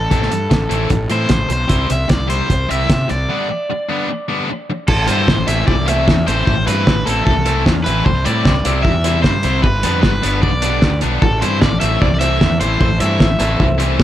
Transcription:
Already playing: A4
0.10 A1 E3 A3 C4 E4, kick, closed hi-hat
0.23 snare
0.31 G2, muted distorted electric guitar stroke, closed hi-hat
0.50 A1, muted distorted electric guitar stroke, kick, snare, closed hi-hat
0.69 A1 E3 A3 C4 E4, closed hi-hat
0.90 A1, muted distorted electric guitar stroke, kick, closed hi-hat
1.10 A2 E3 A3 C4 E4 C5, closed hi-hat
1.29 A1, muted distorted electric guitar stroke, kick, snare, closed hi-hat
1.49 B1, muted distorted electric guitar stroke, closed hi-hat
1.53 C5
1.68 C2 C3 G3 C4 E4, kick, closed hi-hat
1.90 C2 E5, muted distorted electric guitar stroke, closed hi-hat
2.08 C2 D5, muted distorted electric guitar stroke, kick, snare, closed hi-hat
2.28 C3 G3 C4 E4 C5, closed hi-hat
2.49 C2, muted distorted electric guitar stroke, kick, closed hi-hat
2.69 C2 C3 G3 C4 E4 E5, closed hi-hat
2.90 C3, muted distorted electric guitar stroke, kick, snare, closed hi-hat
3.08 C2 D5, muted distorted electric guitar stroke, closed hi-hat
3.29 D3 G3 B3 D4
3.49 muted distorted electric guitar stroke
3.70 muted distorted electric guitar stroke
3.89 D3 G3 B3 D4
4.09 muted distorted electric guitar stroke
4.28 D3 G3 B3 D4
4.50 muted distorted electric guitar stroke
4.70 muted distorted electric guitar stroke
4.88 A1 A4, kick, crash
5.07 G2 E3 A3 C4 E4 C5, closed hi-hat
5.28 A1, kick, snare
5.47 A1 E3 A3 C4 E4 E5, closed hi-hat
5.67 C2 D5, kick
5.86 E3 A3 C4 E4 E5, closed hi-hat
6.07 E2, kick, snare
6.26 A1 E3 A3 C4 E4 C5, closed hi-hat
6.46 A1 C5, kick
6.66 G2 E3 A3 C4 E4 B4, closed hi-hat
6.87 A1, kick, snare
7.06 A1 E3 A3 C4 E4 A4, closed hi-hat
7.25 C2 A4, kick
7.45 E3 A3 C4 E4, closed hi-hat
7.66 E2, kick, snare
7.84 A1 E3 A3 C4 E4 B4, closed hi-hat
8.05 C2 C5, kick
8.25 A2 C3 G3 C4 E4 D5, closed hi-hat
8.45 C2, kick, snare
8.65 C2 C3 G3 C4 E4, closed hi-hat
8.83 E2 E5, kick
9.04 C3 G3 C4 E4, closed hi-hat
9.23 G2 C5, kick, snare
9.43 C2 C3 G3 C4 E4, closed hi-hat
9.63 G1 B4, kick
9.83 F2 D3 G3 B3 D4, closed hi-hat
10.02 G1 B4, kick, snare
10.22 G1 D3 G3 B3 D4, closed hi-hat
10.42 B1 D5, kick
10.62 D3 G3 B3 D4, closed hi-hat
10.82 D2, kick, snare
11.01 B1 D3 G3 B3 D4, closed hi-hat
11.22 A1 E3 A3 C4 A4 C5, kick
11.41 G2 E3 A3 C4 E4 C5, closed hi-hat
11.62 A1 D5, kick, snare
11.80 A1 E3 A3 C4 E4 E5, closed hi-hat
12.01 C2 D5, kick
12.14 D5
12.20 E3 A3 C4 E4 E5, closed hi-hat
12.41 E2, kick, snare
12.60 A1 E3 A3 C4 E4 C5, closed hi-hat
12.81 A1 C5, kick
13.00 G2 E3 A3 C4 E4 E5, closed hi-hat
13.20 A1, kick, snare
13.39 A1 E3 A3 C4 E4, closed hi-hat
13.60 C2, kick
13.78 E3 A3 C4 E4, closed hi-hat
14.00 kick, snare

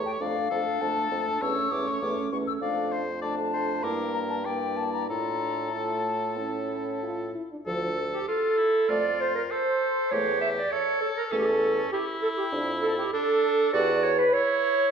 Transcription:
Already playing: A3 G4 C#5
0.05 G5
0.20 F2 A3 D4 D5 F5
0.51 F2 A3 D4 A4
0.81 F2 A3 D4 A5
1.11 F2 A3 D4
1.41 E2 A3 C#4 C#5 E6
1.71 E2 A3 C#4 D6
1.87 C#6
2.01 E2 A3 C#4 D6
2.32 E2 A3 C#4 C#6
2.47 E6
2.61 F2 A3 D4 D5 F5
2.92 C5
3.22 A3 D4 D5 A5
3.53 C5
3.83 G2 A#3 E4 A#4 D6
4.14 A#5
4.29 A5
4.44 A#3 E4 D5 G5
4.76 A5
4.93 A#5
5.08 A2 D4 F4 A4 A#5
5.73 A3 F4 A5
6.38 C#4 E4
7.03 F4
7.35 E4
7.51 D4
7.66 D2 F3 A4
7.97 A4
8.13 G4
8.28 F4 A4
8.58 E4
8.89 F2 A3 F4 D5
9.20 C5
9.35 A#4
9.50 A4 C5
10.11 E2 A3 G4 C#5
10.41 E5
10.56 D5
10.71 A4 C#5
11.01 A4
11.16 A#4
11.31 E2 A3 C#4 A4
11.39 G4
11.46 A4
11.92 E4 G4
12.21 A4
12.37 G4
12.52 F2 D4
12.83 A4
12.97 G4
13.13 D4 A4
13.73 E2 F#4 G4 D5
14.04 C#5
14.18 B4
14.32 E4 C#5

